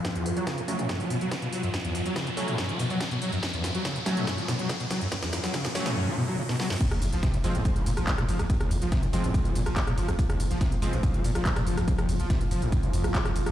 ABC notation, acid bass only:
X:1
M:4/4
L:1/16
Q:1/4=142
K:Gblyd
V:1 name="Acid bass" clef=bass
G,, =E,, G,, G, D, =A,, G, A,, G,, G, =B,, G, D, B,, G, G,, | G,, =E,, G,, G, D, =A,, G, A,, G,, G, =B,, G, D, B,, G, G,, | G,, =E,, G,, G, D, =A,, G, A,, G,, G, =B,, G, D, B,, G, G,, | G,, =E,, G,, G, D, =A,, G, A,, G,, G, =B,, G, D, B,, G, G,, |
F,, E,, F,, F, C, A,, F, A,, F,, F, B,, F, C, B,, F, F,, | F,, E,, F,, F, C, A,, F, A,, F,, F, B,, F, C, B,, F, F,, | F,, E,, F,, F, C, A,, F, A,, F,, F, B,, F, C, B,, F, F,, | F,, E,, F,, F, C, A,, F, A,, F,, F, F,, F,,, E,, G,, F,,, F,, |]